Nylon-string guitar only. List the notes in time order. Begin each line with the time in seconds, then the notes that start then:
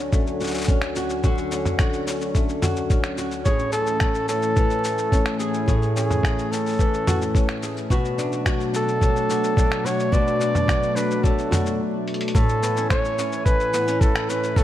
Already playing: D3 C#4 F#4
0.12 A3
0.41 F#4
0.69 C#4
0.97 F#4
1.24 D3 F#4
1.52 C#4
1.79 F#4
2.07 C#4
2.35 A3
2.62 F#4
2.90 C#4
3.18 F#4
3.46 A2 G#4
3.73 C#4
4.29 C#4
4.57 E3
5.12 C#4
5.39 G#4
5.68 A2 G#4
5.96 C#4
6.52 C#4
6.79 E3
7.08 F#4
7.35 C#4
7.63 G#4
7.90 B2 F#4
8.18 D4
8.46 F#4
8.74 D4
9.01 F#3
9.29 F#4
9.56 D4
9.85 F#4
10.12 B2 F#4
10.40 D4
10.68 F#4
10.96 D4
11.23 F#3
11.51 F#4
12.35 A2
12.62 B3
12.77 C#4
12.90 A3
13.18 C#4
13.74 B3
13.88 C#4
14.01 A3
14.29 C#4
14.56 A2